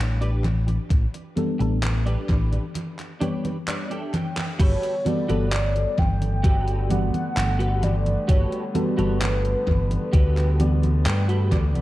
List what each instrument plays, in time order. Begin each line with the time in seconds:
0.00 fingered electric bass A1
0.21 clean electric guitar D4 G4 B4, closed hi-hat
0.44 closed hi-hat, high conga
0.67 muted clean electric guitar stroke, closed hi-hat, high conga
0.90 fingered electric bass A1, kick, closed hi-hat, high conga
1.14 closed hi-hat
1.36 fm electric piano G3 B3 D4 A4, closed hi-hat, high conga
1.59 fingered electric bass A1, fm electric piano G3 B3 D4 A4, muted clean electric guitar stroke, closed hi-hat, high conga
1.82 muted clean electric guitar stroke, clap, closed hi-hat, high conga
2.06 clean electric guitar D4 G4 B4, closed hi-hat
2.29 fingered electric bass A1, kick, closed hi-hat, high conga
2.53 closed hi-hat, high conga
2.75 closed hi-hat, high conga
2.99 clap, closed hi-hat
3.21 fm electric piano G3 B3 D4 C#5, clean electric guitar D4 G4 B4, closed hi-hat, high conga
3.45 closed hi-hat, high conga
3.67 clean electric guitar D5, clap, closed hi-hat, high conga
3.90 clean electric guitar D4 G4 A4 E5, closed hi-hat
4.14 clean electric guitar G5, closed hi-hat, high conga
4.36 muted clean electric guitar stroke, clap, closed hi-hat, high conga
4.59 fingered electric bass G1, string section D3 G3 A3 B3, clean electric guitar F#4 G4 A4 B4, soft synth lead C#5, kick, closed hi-hat, crash, high conga
4.83 closed hi-hat
5.05 fm electric piano G3 B3 F#4 A4, soft synth lead D5, closed hi-hat, high conga
5.28 fingered electric bass G1, fm electric piano G3 B3 F#4 A4, clean electric guitar F#4 G4 A4 B4, closed hi-hat, high conga
5.52 clap, closed hi-hat, high conga
5.75 muted clean electric guitar stroke, closed hi-hat
5.98 fingered electric bass G1, soft synth lead G5, kick, high conga
6.22 closed hi-hat, high conga
6.43 clean electric guitar F#4 G4 A4 B4, kick, closed hi-hat, high conga
6.68 closed hi-hat
6.89 fm electric piano G3 B3 F#4 D5, soft synth lead F#5, closed hi-hat, high conga
7.14 muted fingered electric bass stroke, closed hi-hat, high conga
7.37 fingered electric bass G1, clap, closed hi-hat, high conga
7.59 clean electric guitar F#4 G4 A4 B4, closed hi-hat
7.83 soft synth lead D5, closed hi-hat, high conga
8.06 closed hi-hat, high conga
8.28 fingered electric bass G1, clean electric guitar F#4 G4 A4 B4, soft synth lead C#5, kick, closed hi-hat, high conga
8.52 closed hi-hat
8.74 fm electric piano G3 B3 F#4 A4, soft synth lead B4, closed hi-hat, high conga
8.97 fingered electric bass G1, fm electric piano G3 B3 F#4 A4, clean electric guitar F#4 G4 A4 C#5, closed hi-hat, high conga
9.22 clap, closed hi-hat, high conga
9.44 muted clean electric guitar stroke, closed hi-hat
9.67 fingered electric bass G1, kick, high conga
9.91 closed hi-hat, high conga
10.13 fingered electric bass D2, clean electric guitar F#4 G4 A4 B4, kick, closed hi-hat, high conga
10.37 clap, closed hi-hat
10.59 fm electric piano G3 B3 F#4 D5, closed hi-hat, high conga
10.83 closed hi-hat, high conga
11.06 fingered electric bass G2, clean electric guitar G5, clap, closed hi-hat, high conga
11.28 clean electric guitar F#4 G4 A4 B4, closed hi-hat
11.52 fingered electric bass D2, clean electric guitar D5, kick, closed hi-hat, high conga
11.75 fingered electric bass B1, closed hi-hat, high conga